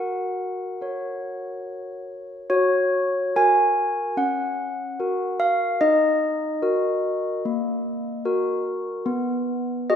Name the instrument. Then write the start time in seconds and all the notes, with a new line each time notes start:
handbells
Already playing: F#4 A#4 F#5
0.81 A#4 C#5
2.50 F#4 C#5
3.36 F#4 A#4 G#5
4.17 C#4 F#5
5.00 F#4 A#4
5.40 F5
5.81 D#4 D#5
6.62 F#4 A#4
7.45 A#3
8.25 F#4 A#4
9.06 B3
9.90 F#4 G#4 D#5